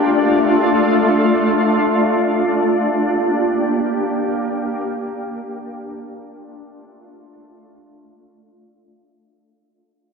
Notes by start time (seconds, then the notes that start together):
Already playing: A3 D4 F4
2.62 A#3 G4
5.93 A3 D4 F4